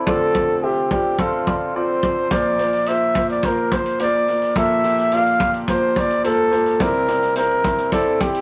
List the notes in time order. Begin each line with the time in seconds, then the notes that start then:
0.06 D3 A3 C4 F4 A4 D5, kick
0.35 C4 F4 D5, kick
0.63 C4 F4 G4 E5
0.91 C4 F4 G4 D5, kick
1.19 C4 F4 A4, kick
1.47 C4 F4 D5, kick
1.76 C4 F4 C5 D5
2.03 C4 F4 D5, kick
2.31 A#2 F3 A#3 F4 C5 D5, kick, closed hi-hat
2.59 A#3 F4 C5, closed hi-hat
2.73 closed hi-hat
2.86 A#3 F4 C5 E5, closed hi-hat
3.15 A#3 F4 C5, kick, closed hi-hat
3.29 D5, closed hi-hat
3.43 A#3 F4 A#4 C5, kick, closed hi-hat
3.72 A#3 F4 C5, kick, closed hi-hat
3.86 closed hi-hat
3.99 A#3 F4 C5 D5, closed hi-hat
4.28 A#3 F4 A#4, closed hi-hat
4.42 closed hi-hat
4.56 A#2 F3 A#3 F4 A4 E5, kick, closed hi-hat
4.84 A#3 F4 G4, closed hi-hat
4.98 closed hi-hat
5.12 A#3 F4 D5 F5, closed hi-hat
5.26 closed hi-hat
5.40 A#3 F4 G4, kick, closed hi-hat
5.54 closed hi-hat
5.68 A#3 F4 C5, kick, closed hi-hat
5.96 A#3 F4 C5 D5, kick, closed hi-hat
6.10 closed hi-hat
6.24 A#3 F4 A4 C5, closed hi-hat
6.51 A#3 F4 C5, closed hi-hat
6.66 closed hi-hat
6.80 C3 G3 C4 E4 A#4 D5, kick, closed hi-hat
6.94 closed hi-hat
7.08 C4 E4 D5, closed hi-hat
7.22 closed hi-hat
7.36 C4 E4 A#4 C5, closed hi-hat
7.64 C4 E4 E5, kick, closed hi-hat
7.78 closed hi-hat
7.92 C4 E4 A4 D5, kick, closed hi-hat
8.20 C4 E4 G4, kick, closed hi-hat
8.35 closed hi-hat